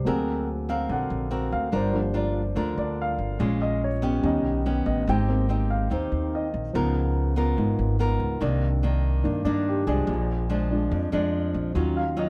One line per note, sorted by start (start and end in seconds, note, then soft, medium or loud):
0.05 0.86 D2 loud
0.05 0.88 D3 medium
0.05 1.68 F#3 soft
0.05 1.68 A#3 soft
0.05 1.69 C4 medium
0.05 0.48 C4 medium
0.05 0.48 F#4 medium
0.05 0.65 G#4 medium
0.05 0.48 A#4 medium
0.69 1.28 C4 medium
0.69 1.28 F#4 medium
0.69 1.28 A#4 medium
0.69 0.89 F5 medium
0.89 1.09 A#1 medium
0.89 1.71 D3 medium
0.89 1.49 F#5 medium
1.10 1.49 A#1 medium
1.31 1.71 C4 medium
1.31 1.71 F#4 medium
1.31 1.71 A#4 medium
1.52 1.72 D2 medium
1.52 1.73 F5 medium
1.72 2.52 G1 loud
1.72 2.54 G3 medium
1.72 1.99 D4 medium
1.72 2.00 F4 medium
1.72 2.00 A#4 medium
1.72 2.13 C5 medium
1.93 2.53 F3 soft
1.93 2.53 A#3 soft
1.93 2.54 D4 soft
2.14 2.41 D4 medium
2.14 2.41 F4 medium
2.14 2.42 A#4 medium
2.14 2.74 D5 medium
2.55 2.76 D2 medium
2.55 3.38 D3 medium
2.55 3.36 D4 medium
2.55 3.36 F4 medium
2.55 3.37 A#4 medium
2.77 3.16 D2 medium
2.77 2.98 D5 medium
3.02 3.59 F5 medium
3.18 3.38 G1 medium
3.39 4.19 A#1 loud
3.39 4.21 A#2 medium
3.39 3.99 G#3 soft
3.39 3.81 G#3 medium
3.39 3.81 C#4 soft
3.39 4.00 C#4 soft
3.39 3.82 F4 medium
3.62 3.82 D#5 medium
3.84 4.22 C#5 medium
4.02 4.62 B3 medium
4.02 4.62 C#4 medium
4.02 4.62 G4 medium
4.22 4.43 D#2 loud
4.22 5.05 D#3 medium
4.22 5.02 G3 soft
4.22 5.03 B3 soft
4.22 5.03 C#4 soft
4.26 4.83 D#5 medium
4.43 4.83 B1 medium
4.66 5.06 B3 medium
4.66 5.06 C#4 medium
4.66 5.06 G4 medium
4.86 5.06 A1 medium
4.86 5.07 D#5 medium
5.08 5.87 G#1 loud
5.08 5.89 G#3 medium
5.08 5.46 C4 medium
5.08 5.46 D#4 medium
5.08 5.47 G4 medium
5.08 5.67 G5 medium
5.28 6.70 A#3 soft
5.28 6.71 C4 soft
5.49 5.87 C4 medium
5.49 5.88 D#4 medium
5.49 5.88 G4 medium
5.70 5.90 F5 medium
5.90 6.10 D#2 medium
5.90 6.72 D#3 medium
5.90 6.47 C4 medium
5.90 6.47 D#4 soft
5.90 6.47 G4 medium
5.90 6.31 C5 soft
6.12 6.50 D#2 medium
6.35 6.92 D#5 medium
6.54 6.73 A#1 medium
6.73 7.54 C#2 loud
6.73 7.56 C#3 medium
6.73 8.37 F3 soft
6.73 8.37 B3 soft
6.73 7.34 B3 medium
6.73 8.38 D#4 soft
6.73 7.34 F4 medium
6.73 7.34 A#4 medium
7.36 7.96 B3 medium
7.36 7.96 F4 medium
7.36 7.96 A#4 medium
7.57 7.77 G#1 medium
7.57 8.39 G#2 medium
7.79 8.18 G#1 medium
7.99 8.39 B3 medium
7.99 8.40 F4 medium
7.99 8.40 A#4 medium
8.20 8.40 C#2 medium
8.41 9.21 C2 loud
8.41 9.23 C3 medium
8.41 9.22 D#3 soft
8.41 8.68 D#3 medium
8.41 9.22 A#3 soft
8.41 8.68 A#3 medium
8.41 9.22 D4 medium
8.41 8.68 D4 medium
8.83 9.42 D#3 medium
8.83 9.43 A#3 medium
8.83 9.43 D4 medium
9.23 10.06 G2 medium
9.23 9.44 G2 medium
9.23 9.43 D#3 soft
9.23 9.43 A#3 soft
9.23 9.43 D4 soft
9.45 9.84 G2 medium
9.45 9.84 D#3 medium
9.45 9.84 A#3 medium
9.45 9.65 D4 medium
9.45 9.84 D4 medium
9.69 9.88 G4 medium
9.87 10.07 C2 medium
9.87 10.46 F3 medium
9.87 10.46 G#3 medium
9.87 10.47 D4 medium
9.87 10.46 G#4 medium
10.07 10.87 A#1 loud
10.07 10.90 A#2 medium
10.49 11.09 F3 medium
10.49 11.09 G#3 medium
10.49 11.09 D4 medium
10.70 10.98 F3 soft
10.70 10.98 G#3 soft
10.70 10.99 D4 soft
10.91 11.73 F2 medium
10.91 11.11 F2 medium
11.12 11.51 F2 medium
11.12 11.72 F3 medium
11.12 11.72 G#3 medium
11.12 11.72 D4 medium
11.54 11.74 A#1 medium
11.74 12.29 D#2 medium
11.74 12.29 D#3 medium
11.74 12.02 F#3 soft
11.74 12.02 F#3 medium
11.74 12.03 C#4 soft
11.74 12.02 C#4 medium
11.74 12.03 F4 soft
11.74 12.02 F4 medium
11.97 12.17 F5 medium
12.17 12.29 F#3 medium
12.17 12.29 C#4 medium
12.17 12.29 F4 medium
12.17 12.29 D#5 medium